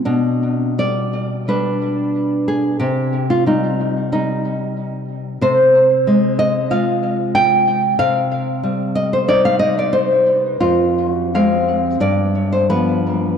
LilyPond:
\new Staff \with { instrumentName = "Nylon-string guitar" } { \time 4/4 \key c \minor \tempo 4 = 91 << { d'4 d''4 b'4. aes'8 | g'8. f'16 ees'4 ees'4. r8 | c''4. ees''8 f''4 g''4 | f''4. ees''16 c''16 d''16 f''16 ees''16 d''16 c''4 |
f'4 f''4 d''8. c''16 b'4 | } \\ { b,4 g4 <g d'>2 | c4 g4 g2 | c4 aes4 <aes f'>2 | c4 g4 <g ees'>2 |
f,4 <aes c'>4 g,4 <f b>4 | } >> }